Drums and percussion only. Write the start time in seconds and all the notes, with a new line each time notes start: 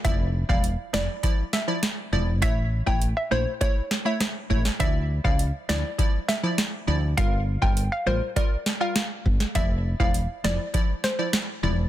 0.05 kick, closed hi-hat
0.49 kick
0.64 closed hi-hat
0.94 snare
1.23 kick, closed hi-hat
1.53 snare
1.83 snare, closed hi-hat
2.42 kick, closed hi-hat
2.87 kick
3.02 closed hi-hat
3.61 kick, closed hi-hat
3.91 snare
4.21 cross-stick, snare, closed hi-hat
4.50 kick
4.65 snare
4.80 kick, closed hi-hat
5.25 kick
5.39 closed hi-hat
5.69 snare
5.99 kick, closed hi-hat
6.29 snare
6.58 snare, closed hi-hat
7.18 kick, closed hi-hat
7.62 kick
7.77 closed hi-hat
8.36 kick, closed hi-hat
8.66 snare
8.96 snare, closed hi-hat
9.26 kick
9.40 snare
9.55 kick, closed hi-hat
10.00 kick
10.14 closed hi-hat
10.44 snare
10.74 kick, closed hi-hat
11.04 snare
11.33 snare, closed hi-hat